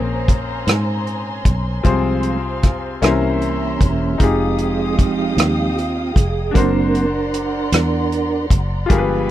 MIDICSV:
0, 0, Header, 1, 6, 480
1, 0, Start_track
1, 0, Key_signature, -4, "minor"
1, 0, Tempo, 783290
1, 1134, Time_signature, 6, 3, 24, 8
1, 5704, End_track
2, 0, Start_track
2, 0, Title_t, "String section"
2, 0, Program_c, 0, 48
2, 0, Note_on_c, 0, 72, 60
2, 0, Note_on_c, 0, 80, 52
2, 0, Note_on_c, 0, 82, 52
2, 0, Note_on_c, 0, 84, 61
2, 1113, Note_off_c, 0, 82, 0
2, 1115, Note_off_c, 0, 72, 0
2, 1134, Note_on_c, 0, 77, 48
2, 1138, Note_on_c, 0, 72, 49
2, 1827, Note_off_c, 0, 84, 0
2, 1828, Note_off_c, 0, 80, 0
2, 1848, Note_off_c, 0, 77, 0
2, 1850, Note_off_c, 0, 72, 0
2, 1857, Note_on_c, 0, 84, 61
2, 1858, Note_on_c, 0, 76, 56
2, 1859, Note_on_c, 0, 82, 50
2, 1861, Note_on_c, 0, 61, 56
2, 2569, Note_off_c, 0, 76, 0
2, 2569, Note_off_c, 0, 84, 0
2, 2570, Note_off_c, 0, 82, 0
2, 2571, Note_off_c, 0, 61, 0
2, 2574, Note_on_c, 0, 75, 47
2, 2576, Note_on_c, 0, 77, 59
2, 2576, Note_on_c, 0, 79, 54
2, 2579, Note_on_c, 0, 87, 65
2, 4000, Note_off_c, 0, 75, 0
2, 4001, Note_off_c, 0, 77, 0
2, 4001, Note_off_c, 0, 79, 0
2, 4002, Note_off_c, 0, 87, 0
2, 4010, Note_on_c, 0, 82, 48
2, 4013, Note_on_c, 0, 78, 52
2, 4015, Note_on_c, 0, 84, 61
2, 4016, Note_on_c, 0, 74, 55
2, 5435, Note_off_c, 0, 82, 0
2, 5436, Note_off_c, 0, 78, 0
2, 5437, Note_off_c, 0, 84, 0
2, 5438, Note_off_c, 0, 74, 0
2, 5447, Note_on_c, 0, 80, 55
2, 5450, Note_on_c, 0, 83, 70
2, 5452, Note_on_c, 0, 77, 56
2, 5455, Note_on_c, 0, 79, 54
2, 5704, Note_off_c, 0, 77, 0
2, 5704, Note_off_c, 0, 79, 0
2, 5704, Note_off_c, 0, 80, 0
2, 5704, Note_off_c, 0, 83, 0
2, 5704, End_track
3, 0, Start_track
3, 0, Title_t, "Grand piano"
3, 0, Program_c, 1, 0
3, 0, Control_c, 1, 64, 127
3, 0, Note_on_c, 1, 46, 62
3, 0, Note_on_c, 1, 60, 63
3, 0, Note_on_c, 1, 61, 57
3, 0, Note_on_c, 1, 68, 55
3, 0, Note_on_c, 1, 70, 65
3, 386, Note_off_c, 1, 46, 0
3, 1099, Note_off_c, 1, 60, 0
3, 1105, Note_off_c, 1, 61, 0
3, 1111, Note_off_c, 1, 68, 0
3, 1115, Note_off_c, 1, 70, 0
3, 1124, Note_on_c, 1, 60, 63
3, 1125, Note_on_c, 1, 65, 51
3, 1132, Note_on_c, 1, 48, 56
3, 1132, Note_on_c, 1, 68, 54
3, 1139, Note_on_c, 1, 72, 70
3, 1143, Control_c, 1, 64, 0
3, 1255, Control_c, 1, 64, 127
3, 1829, Note_off_c, 1, 48, 0
3, 1850, Note_off_c, 1, 60, 0
3, 1850, Note_off_c, 1, 65, 0
3, 1850, Note_on_c, 1, 61, 57
3, 1854, Note_off_c, 1, 68, 0
3, 1854, Note_on_c, 1, 64, 57
3, 1856, Note_off_c, 1, 72, 0
3, 1858, Note_on_c, 1, 70, 55
3, 1859, Note_on_c, 1, 48, 54
3, 1862, Control_c, 1, 64, 0
3, 1865, Note_on_c, 1, 72, 64
3, 1962, Control_c, 1, 64, 127
3, 2553, Note_off_c, 1, 48, 0
3, 2561, Note_on_c, 1, 63, 50
3, 2572, Note_on_c, 1, 65, 45
3, 2573, Note_off_c, 1, 61, 0
3, 2575, Note_off_c, 1, 64, 0
3, 2577, Note_off_c, 1, 70, 0
3, 2580, Note_off_c, 1, 72, 0
3, 2583, Control_c, 1, 64, 0
3, 2583, Note_on_c, 1, 67, 43
3, 2593, Note_on_c, 1, 68, 53
3, 2674, Control_c, 1, 64, 127
3, 3983, Note_off_c, 1, 63, 0
3, 3988, Note_off_c, 1, 65, 0
3, 3991, Note_on_c, 1, 62, 48
3, 3994, Note_off_c, 1, 67, 0
3, 3999, Note_off_c, 1, 68, 0
3, 4003, Note_on_c, 1, 66, 46
3, 4012, Note_on_c, 1, 70, 44
3, 4023, Control_c, 1, 64, 0
3, 4024, Note_on_c, 1, 72, 58
3, 4139, Control_c, 1, 64, 127
3, 5415, Note_off_c, 1, 62, 0
3, 5421, Note_off_c, 1, 66, 0
3, 5425, Note_off_c, 1, 70, 0
3, 5429, Note_on_c, 1, 65, 61
3, 5432, Note_off_c, 1, 72, 0
3, 5445, Note_on_c, 1, 67, 55
3, 5450, Note_on_c, 1, 43, 62
3, 5455, Note_on_c, 1, 68, 56
3, 5460, Control_c, 1, 64, 0
3, 5465, Note_on_c, 1, 70, 54
3, 5498, Note_off_c, 1, 70, 0
3, 5505, Note_on_c, 1, 71, 66
3, 5571, Control_c, 1, 64, 127
3, 5704, Note_off_c, 1, 43, 0
3, 5704, Note_off_c, 1, 65, 0
3, 5704, Note_off_c, 1, 67, 0
3, 5704, Note_off_c, 1, 68, 0
3, 5704, Note_off_c, 1, 71, 0
3, 5704, End_track
4, 0, Start_track
4, 0, Title_t, "Tonewheel organ"
4, 0, Program_c, 2, 16
4, 1135, Note_on_c, 2, 53, 39
4, 1135, Note_on_c, 2, 56, 35
4, 1138, Note_on_c, 2, 60, 44
4, 1454, Note_off_c, 2, 53, 0
4, 1455, Note_off_c, 2, 56, 0
4, 1456, Note_off_c, 2, 60, 0
4, 1865, Note_on_c, 2, 52, 42
4, 1867, Note_on_c, 2, 58, 34
4, 1871, Note_on_c, 2, 61, 46
4, 2536, Note_on_c, 2, 67, 48
4, 2556, Note_off_c, 2, 52, 0
4, 2557, Note_off_c, 2, 58, 0
4, 2559, Note_off_c, 2, 61, 0
4, 2574, Note_on_c, 2, 56, 37
4, 2574, Note_on_c, 2, 68, 63
4, 2576, Note_on_c, 2, 53, 37
4, 2577, Note_off_c, 2, 67, 0
4, 2584, Note_on_c, 2, 63, 46
4, 2585, Note_on_c, 2, 60, 44
4, 3030, Note_off_c, 2, 68, 0
4, 3043, Note_off_c, 2, 60, 0
4, 3045, Note_off_c, 2, 63, 0
4, 3048, Note_on_c, 2, 67, 68
4, 3051, Note_on_c, 2, 60, 51
4, 3052, Note_on_c, 2, 63, 49
4, 3270, Note_off_c, 2, 56, 0
4, 3271, Note_off_c, 2, 53, 0
4, 3282, Note_on_c, 2, 53, 36
4, 3282, Note_on_c, 2, 56, 35
4, 3284, Note_off_c, 2, 63, 0
4, 3291, Note_on_c, 2, 63, 43
4, 3504, Note_off_c, 2, 53, 0
4, 3504, Note_off_c, 2, 56, 0
4, 3509, Note_off_c, 2, 63, 0
4, 3528, Note_on_c, 2, 65, 55
4, 3546, Note_off_c, 2, 67, 0
4, 3748, Note_off_c, 2, 60, 0
4, 3759, Note_on_c, 2, 68, 69
4, 3779, Note_off_c, 2, 65, 0
4, 4002, Note_on_c, 2, 58, 39
4, 4003, Note_on_c, 2, 54, 40
4, 4008, Note_on_c, 2, 60, 45
4, 4009, Note_on_c, 2, 70, 72
4, 4014, Note_off_c, 2, 68, 0
4, 4014, Note_on_c, 2, 62, 51
4, 4327, Note_off_c, 2, 54, 0
4, 4327, Note_off_c, 2, 58, 0
4, 4330, Note_off_c, 2, 60, 0
4, 5185, Note_off_c, 2, 70, 0
4, 5187, Note_off_c, 2, 62, 0
4, 5450, Note_on_c, 2, 53, 42
4, 5453, Note_on_c, 2, 56, 41
4, 5454, Note_on_c, 2, 59, 46
4, 5704, Note_off_c, 2, 53, 0
4, 5704, Note_off_c, 2, 56, 0
4, 5704, Note_off_c, 2, 59, 0
4, 5704, End_track
5, 0, Start_track
5, 0, Title_t, "Fingered electric bass"
5, 0, Program_c, 3, 33
5, 0, Note_on_c, 3, 34, 84
5, 387, Note_off_c, 3, 34, 0
5, 410, Note_on_c, 3, 44, 74
5, 868, Note_off_c, 3, 44, 0
5, 890, Note_on_c, 3, 35, 67
5, 1113, Note_off_c, 3, 35, 0
5, 1131, Note_on_c, 3, 36, 71
5, 1829, Note_off_c, 3, 36, 0
5, 1851, Note_on_c, 3, 36, 63
5, 2309, Note_off_c, 3, 36, 0
5, 2335, Note_on_c, 3, 28, 68
5, 2556, Note_off_c, 3, 28, 0
5, 2576, Note_on_c, 3, 29, 77
5, 3271, Note_off_c, 3, 29, 0
5, 3289, Note_on_c, 3, 39, 74
5, 3747, Note_off_c, 3, 39, 0
5, 3776, Note_on_c, 3, 29, 63
5, 3996, Note_off_c, 3, 29, 0
5, 4017, Note_on_c, 3, 30, 77
5, 4710, Note_off_c, 3, 30, 0
5, 4732, Note_on_c, 3, 40, 75
5, 5187, Note_off_c, 3, 40, 0
5, 5212, Note_on_c, 3, 30, 70
5, 5432, Note_off_c, 3, 30, 0
5, 5456, Note_on_c, 3, 31, 77
5, 5704, Note_off_c, 3, 31, 0
5, 5704, End_track
6, 0, Start_track
6, 0, Title_t, "Drums"
6, 174, Note_on_c, 9, 36, 67
6, 177, Note_on_c, 9, 42, 49
6, 235, Note_off_c, 9, 36, 0
6, 238, Note_off_c, 9, 42, 0
6, 413, Note_on_c, 9, 42, 77
6, 425, Note_on_c, 9, 37, 89
6, 475, Note_off_c, 9, 42, 0
6, 486, Note_off_c, 9, 37, 0
6, 655, Note_on_c, 9, 42, 30
6, 717, Note_off_c, 9, 42, 0
6, 890, Note_on_c, 9, 36, 75
6, 890, Note_on_c, 9, 42, 60
6, 951, Note_off_c, 9, 36, 0
6, 952, Note_off_c, 9, 42, 0
6, 1131, Note_on_c, 9, 42, 66
6, 1132, Note_on_c, 9, 36, 75
6, 1192, Note_off_c, 9, 42, 0
6, 1193, Note_off_c, 9, 36, 0
6, 1366, Note_on_c, 9, 42, 45
6, 1427, Note_off_c, 9, 42, 0
6, 1612, Note_on_c, 9, 42, 52
6, 1615, Note_on_c, 9, 36, 66
6, 1624, Note_on_c, 9, 37, 26
6, 1674, Note_off_c, 9, 42, 0
6, 1676, Note_off_c, 9, 36, 0
6, 1685, Note_off_c, 9, 37, 0
6, 1853, Note_on_c, 9, 42, 72
6, 1864, Note_on_c, 9, 37, 81
6, 1914, Note_off_c, 9, 42, 0
6, 1925, Note_off_c, 9, 37, 0
6, 2093, Note_on_c, 9, 42, 33
6, 2154, Note_off_c, 9, 42, 0
6, 2333, Note_on_c, 9, 36, 71
6, 2336, Note_on_c, 9, 42, 55
6, 2394, Note_off_c, 9, 36, 0
6, 2397, Note_off_c, 9, 42, 0
6, 2573, Note_on_c, 9, 42, 74
6, 2574, Note_on_c, 9, 36, 82
6, 2634, Note_off_c, 9, 42, 0
6, 2635, Note_off_c, 9, 36, 0
6, 2809, Note_on_c, 9, 42, 46
6, 2870, Note_off_c, 9, 42, 0
6, 3056, Note_on_c, 9, 36, 65
6, 3057, Note_on_c, 9, 42, 48
6, 3117, Note_off_c, 9, 36, 0
6, 3118, Note_off_c, 9, 42, 0
6, 3297, Note_on_c, 9, 42, 84
6, 3309, Note_on_c, 9, 37, 81
6, 3358, Note_off_c, 9, 42, 0
6, 3370, Note_off_c, 9, 37, 0
6, 3544, Note_on_c, 9, 42, 34
6, 3605, Note_off_c, 9, 42, 0
6, 3774, Note_on_c, 9, 36, 76
6, 3781, Note_on_c, 9, 42, 56
6, 3836, Note_off_c, 9, 36, 0
6, 3842, Note_off_c, 9, 42, 0
6, 4015, Note_on_c, 9, 36, 73
6, 4017, Note_on_c, 9, 42, 69
6, 4076, Note_off_c, 9, 36, 0
6, 4079, Note_off_c, 9, 42, 0
6, 4257, Note_on_c, 9, 42, 43
6, 4318, Note_off_c, 9, 42, 0
6, 4497, Note_on_c, 9, 42, 54
6, 4558, Note_off_c, 9, 42, 0
6, 4733, Note_on_c, 9, 42, 80
6, 4744, Note_on_c, 9, 37, 82
6, 4794, Note_off_c, 9, 42, 0
6, 4806, Note_off_c, 9, 37, 0
6, 4977, Note_on_c, 9, 42, 36
6, 5038, Note_off_c, 9, 42, 0
6, 5212, Note_on_c, 9, 36, 72
6, 5214, Note_on_c, 9, 42, 59
6, 5273, Note_off_c, 9, 36, 0
6, 5275, Note_off_c, 9, 42, 0
6, 5453, Note_on_c, 9, 42, 72
6, 5454, Note_on_c, 9, 36, 85
6, 5515, Note_off_c, 9, 36, 0
6, 5515, Note_off_c, 9, 42, 0
6, 5704, End_track
0, 0, End_of_file